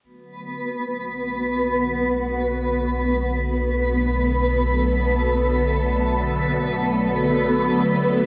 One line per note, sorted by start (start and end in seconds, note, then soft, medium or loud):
0.03 8.26 B1 medium
0.03 8.26 D3 medium
0.03 8.26 F#3 medium
0.03 8.26 A3 medium
0.03 8.26 B3 medium
0.03 4.16 F#4 medium
0.03 8.26 B4 medium
4.17 8.26 A4 medium